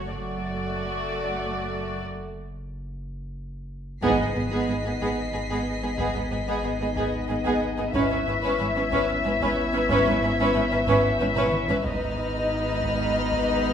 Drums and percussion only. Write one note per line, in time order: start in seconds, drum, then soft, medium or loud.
4.02 taiko soft
5.00 taiko soft
5.98 taiko medium
6.96 taiko medium
7.45 taiko medium
7.94 taiko medium
8.92 taiko medium
9.41 taiko medium
9.89 taiko medium
10.87 taiko medium
11.36 taiko low-mid medium
11.52 taiko mid medium
11.68 taiko low medium
11.84 taiko medium
12.82 taiko medium
13.31 taiko medium